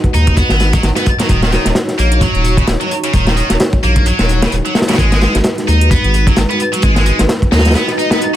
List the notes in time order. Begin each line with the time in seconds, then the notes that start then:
Already playing: G#3 D#4 F#4 B4
0.04 kick, closed hi-hat
0.14 D#2 D#4, closed hi-hat
0.27 kick, closed hi-hat
0.37 B3, kick, closed hi-hat
0.49 G#1, snare, closed hi-hat
0.60 snare, closed hi-hat
0.73 F#3, kick, closed hi-hat
0.83 G#1, snare, closed hi-hat
0.96 B3, snare, closed hi-hat
1.06 kick, closed hi-hat
1.19 F#3, snare, closed hi-hat
1.29 D#1 D#3 C#5, kick, closed hi-hat
1.43 D#3, snare, closed hi-hat
1.52 D#3, snare, closed hi-hat
1.65 D#1, snare, closed hi-hat
1.75 snare, closed hi-hat
1.88 snare, closed hi-hat
1.99 A#1 A#3, closed hi-hat
2.12 closed hi-hat
2.21 F#3, kick, closed hi-hat
2.35 D#1, closed hi-hat
2.44 closed hi-hat
2.57 C#3, kick, closed hi-hat
2.67 D#1, snare, closed hi-hat
2.81 F#3, closed hi-hat
2.91 closed hi-hat
3.04 C#3, closed hi-hat
3.13 D#1 D#3, kick, closed hi-hat
3.27 D#3, snare, closed hi-hat
3.37 D#3, closed hi-hat
3.50 D#1, snare, closed hi-hat
3.60 snare, closed hi-hat
3.73 kick, closed hi-hat
3.83 A#1 A#3, closed hi-hat
3.96 kick, closed hi-hat
4.06 F#3, closed hi-hat
4.19 D#1, snare, closed hi-hat
4.29 closed hi-hat
4.42 C#3, snare, closed hi-hat
4.52 D#1, closed hi-hat
4.66 F#3, closed hi-hat
4.75 snare, closed hi-hat
4.82 snare, closed hi-hat
4.88 C#3, snare, closed hi-hat
4.93 snare, closed hi-hat
4.98 G#1 G#3 D#4 F#4 B4, kick, closed hi-hat
5.12 G#3, snare, closed hi-hat
5.21 G#3, snare, closed hi-hat
5.35 G#1, snare, closed hi-hat
5.44 snare, closed hi-hat
5.58 snare, closed hi-hat
5.68 D#2 D#4, closed hi-hat
5.81 closed hi-hat
5.91 B3, kick, closed hi-hat
6.04 G#1, closed hi-hat
6.14 closed hi-hat
6.27 F#3, kick, closed hi-hat
6.36 G#1, snare, closed hi-hat
6.50 B3, closed hi-hat
6.60 closed hi-hat
6.73 F#3, closed hi-hat
6.82 G#1 G#3, kick, closed hi-hat
6.96 G#3, snare, closed hi-hat
7.06 G#3, closed hi-hat
7.19 G#1, snare, closed hi-hat
7.29 snare, closed hi-hat
7.42 kick, closed hi-hat
7.52 D#2 D#4, snare, closed hi-hat
7.59 snare, closed hi-hat
7.65 snare, closed hi-hat
7.71 snare, closed hi-hat
7.75 B3, snare, closed hi-hat, swell
7.88 snare, closed hi-hat
7.98 D#4, closed hi-hat
8.11 B3, snare, closed hi-hat
8.21 closed hi-hat